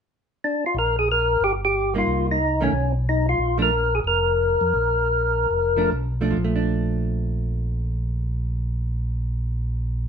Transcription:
0.44 tonewheel organ D4
0.66 tonewheel organ F4
0.75 tonewheel organ A#1 A#4
0.99 tonewheel organ G#4
1.12 tonewheel organ A#4
1.40 tonewheel organ G1 G4
1.65 tonewheel organ G4
1.94 hollow-body jazz guitar G3 A#3 D#4, tonewheel organ F4
2.07 tonewheel organ C2
2.31 tonewheel organ D#4
2.61 hollow-body jazz guitar D#3 A3 C#4, tonewheel organ C#4
2.72 tonewheel organ B1
3.09 tonewheel organ D#4
3.29 tonewheel organ F4
3.38 tonewheel organ A#1
3.58 hollow-body jazz guitar F3 A3 D4
3.62 tonewheel organ A#4
3.95 tonewheel organ G#4
4.04 tonewheel organ F1 A#4
4.61 tonewheel organ F2
4.74 tonewheel organ A#1
5.51 tonewheel organ F1
5.77 hollow-body jazz guitar F3 A3 D4
5.92 tonewheel organ B1
6.21 hollow-body jazz guitar F3 A3 D4
6.31 hollow-body jazz guitar F3
6.37 tonewheel organ A#1
6.44 hollow-body jazz guitar A3
6.56 hollow-body jazz guitar D4

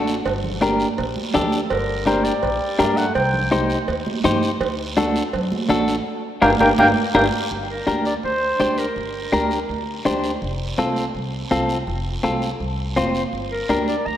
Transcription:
Already playing: upright bass A1, clean electric guitar D4 F#4 A4
0.07 short guiro
0.25 upright bass G1, cowbell, long guiro
0.44 low conga
0.62 clean electric guitar D4 G4 A#4, high conga, short guiro
0.80 short guiro
0.98 upright bass A#1, cowbell, long guiro
1.16 high conga
1.34 upright bass D2, clean electric guitar D4 G4 A4, high conga, low conga, low timbale, short guiro
1.52 short guiro
1.70 upright bass G1, trombone D3, clarinet A#4, cowbell, long guiro
2.06 trombone G3, clean electric guitar D4 G4 A#4, clarinet C5, high conga, short guiro
2.24 trombone G3, clarinet D5, short guiro
2.43 upright bass A#1, cowbell, long guiro
2.79 upright bass G2, clean electric guitar D4 G4 A#4, high conga, low timbale, short guiro
2.97 trombone A3, clarinet F#5, short guiro
3.15 upright bass C2, trombone C4, clarinet G5, cowbell, long guiro
3.34 low conga
3.51 clean electric guitar D#4 G4 C5, high conga, short guiro
3.70 short guiro
3.88 upright bass D#2, cowbell, long guiro
4.07 high conga
4.24 upright bass G2, clean electric guitar D#4 G4 C5, high conga, low conga, short guiro
4.43 short guiro
4.61 upright bass D2, cowbell, long guiro
4.97 clean electric guitar D4 F#4 A4, high conga, short guiro
5.16 short guiro
5.33 upright bass F#2, cowbell, long guiro
5.52 high conga
5.69 upright bass A1, clean electric guitar D4 F#4 A4, high conga, short guiro
5.88 short guiro
6.41 upright bass G1, trombone A#3, clean electric guitar D4 G4 A#4, clarinet G5, high conga, high timbale, long guiro
6.60 upright bass G1, trombone A#3, clean electric guitar D4 G4 A#4, clarinet G5, high conga, high timbale, long guiro
6.78 upright bass G1, trombone A#3, clean electric guitar D4 G4 A#4, clarinet G5, high conga, high timbale, long guiro
7.14 upright bass G1, trombone A#3, clean electric guitar D4 G4 A#4, clarinet G5, high conga, high timbale, long guiro
7.51 upright bass G1, long guiro
7.70 clarinet A#4
7.87 upright bass D2, clean electric guitar D4 G4 A#4, high conga, short guiro
8.05 clarinet D5, short guiro
8.23 upright bass D2, clarinet C5, long guiro
8.60 upright bass D2, clean electric guitar D4 G4 C5, high conga, short guiro
8.78 clarinet A#4, short guiro
8.96 upright bass G1, long guiro
9.32 upright bass D2, clean electric guitar D4 G4 A#4, high conga, short guiro
9.51 short guiro
9.69 upright bass D2, long guiro
10.05 upright bass D2, clean electric guitar D4 G4 C5, high conga, short guiro
10.24 short guiro
10.42 upright bass F1, long guiro
10.78 upright bass C2, clean electric guitar C4 F4 A4, high conga, short guiro
10.96 short guiro
11.15 upright bass C2, long guiro
11.51 upright bass C2, clean electric guitar C4 F4 A4, high conga, short guiro
11.69 short guiro
11.87 upright bass F1, long guiro
12.23 upright bass C2, clean electric guitar C4 F4 A4, high conga, short guiro
12.42 short guiro
12.60 upright bass C2, long guiro
12.96 upright bass F1, clean electric guitar C4 F4 C5, high conga, short guiro
13.15 short guiro
13.33 upright bass G1, long guiro
13.52 clarinet A#4
13.69 upright bass D2, clean electric guitar D4 G4 A#4, high conga, short guiro
13.88 clarinet D5, short guiro
14.06 upright bass D2, clarinet A#5, long guiro

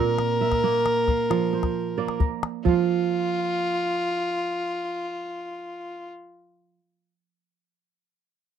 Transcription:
Already playing: kora A#2 C4 F4 G4 A#4, fiddle A#4
0.19 calabash click
0.41 kora E5
0.52 calabash thump, calabash click
0.64 kora A#3
0.86 calabash click
1.08 kora F5, calabash thump, calabash click
1.30 kora F3, calabash click
1.42 calabash click
1.53 kora C5, calabash click
1.63 calabash thump, calabash click
1.98 kora A#3 D5
2.08 calabash click
2.20 kora A#4, calabash thump
2.43 calabash click
2.64 kora F3, fiddle F4, calabash thump
2.69 kora F4
2.73 kora F5

